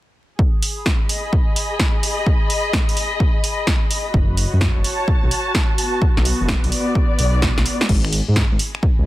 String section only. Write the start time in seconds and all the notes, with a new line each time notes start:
0.38 G#4
0.79 B5
0.99 D#5
4.14 F#4
4.44 C#5
4.71 A5
5.78 B3
6.50 D5
7.89 G#4
8.32 D#5
8.65 B5